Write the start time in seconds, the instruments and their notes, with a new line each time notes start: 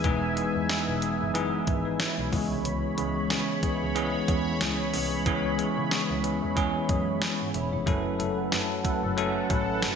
Already playing: tine electric piano E3 G#3 B3 D#4 G#4, analog polysynth G#3 E4 B4, analog synth pad E5 G#5
0.04 double bass E1, tine electric piano E3 G#3 B3 D#4 G#4, kick, closed hi-hat
0.36 tine electric piano E3 G#3 B3 D#4 G#4, closed hi-hat
0.55 double bass E2
0.69 tine electric piano E3 G#3 B3 D#4 G#4, snare, closed hi-hat, tambourine
0.87 double bass E1
1.02 tine electric piano E3 G#3 B3 D#4 G#4, closed hi-hat
1.20 double bass F#1
1.34 tine electric piano E3 G#3 B3 D#4 G#4, closed hi-hat
1.67 double bass G#1, tine electric piano B3 G#4, kick, closed hi-hat
1.85 tine electric piano D#4 B4
2.00 tine electric piano E4 C#5, snare, closed hi-hat, tambourine
2.18 double bass B1, tine electric piano F#4 D#5
2.32 double bass C#2, tine electric piano E3 G#3 B3 C#4 G#4, analog polysynth G#3 E4 C#5, analog synth pad C#5 B5, kick, open hi-hat
2.51 double bass C2
2.65 double bass C#2, closed hi-hat
2.97 double bass C#2, tine electric piano E3 G#3 B3 C#4 G#4, closed hi-hat
3.30 double bass C#3, tine electric piano E3 G#3 B3 C#4 G#4, snare, closed hi-hat, tambourine
3.63 tine electric piano E3 G#3 B3 C#4 G#4, kick, closed hi-hat
3.81 double bass C#2
3.95 tine electric piano E3 G#3 B3 C#4 G#4, closed hi-hat
4.28 double bass E2, tine electric piano E3 G#3 B3 C#4 G#4, kick, closed hi-hat
4.60 double bass C#2, tine electric piano E3 G#3 B3 C#4 G#4, snare, closed hi-hat, tambourine
4.93 double bass C2, tine electric piano E3 G#3 B3 C#4 G#4, open hi-hat
5.25 double bass C#2, tine electric piano E3 G#3 B3 C#4 G#4, kick, closed hi-hat
5.58 tine electric piano E3 G#3 B3 C#4 G#4, closed hi-hat
5.77 double bass C#3
5.91 tine electric piano E3 G#3 B3 C#4 G#4, snare, closed hi-hat, tambourine
6.10 double bass C#2
6.23 tine electric piano E3 G#3 B3 C#4 G#4, closed hi-hat
6.42 double bass E2
6.56 tine electric piano E3 G#3 B3 C#4 G#4, kick, closed hi-hat
6.89 double bass F#2, tine electric piano E3 G#3 B3 C#4 G#4, kick, closed hi-hat
7.22 snare, closed hi-hat, tambourine
7.40 double bass G#2, tine electric piano F#5
7.54 double bass E1, tine electric piano G#4 E5, closed hi-hat
7.72 double bass F1, tine electric piano E4 C#5
7.86 double bass F#1, tine electric piano F#3 A3 C#4 E4 A4, analog polysynth F#3 E4 B4, analog synth pad A4 F#5, kick, closed hi-hat
8.19 double bass F#1, tine electric piano F#3 A3 C#4 E4 A4, closed hi-hat
8.51 double bass F#2, tine electric piano F#3 A3 C#4 E4 A4, snare, closed hi-hat, tambourine
8.84 tine electric piano F#3 A3 C#4 E4 A4, kick, closed hi-hat
9.03 double bass F#1
9.17 tine electric piano F#3 A3 C#4 E4 A4, closed hi-hat
9.49 double bass A1, tine electric piano F#3 A3 C#4 E4 A4, kick, closed hi-hat
9.82 double bass F#1, tine electric piano F#3 A3 C#4 E4 A4, snare, closed hi-hat, tambourine